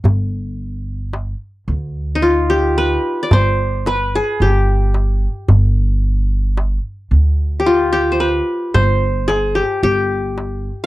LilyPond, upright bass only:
\new Staff \with { instrumentName = "Upright bass" } { \clef bass \time 10/8 \tempo 4 = 55 g,,4. d,4. g,,4 g,,4 | g,,4. d,4. g,,4 g,,4 | }